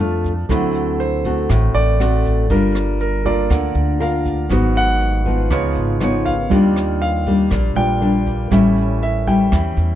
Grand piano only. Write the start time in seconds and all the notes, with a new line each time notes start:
Already playing: A3 C4 D4 F5 A5
0.49 F#3 C4 E4
1.00 C5
1.75 D5
2.51 A#4
3.01 A#4
3.25 A#3 F4 A4 D5
4.02 F5
4.52 B3 F#4
4.77 F#5
5.51 B3 D#4 F4 C#5
6.04 C#5
6.26 F5
6.50 G3 D4 F4
7.02 F5
7.76 G3 D4 F4 G5
8.51 G3 C#4 E4 E5
9.03 E5
9.28 G5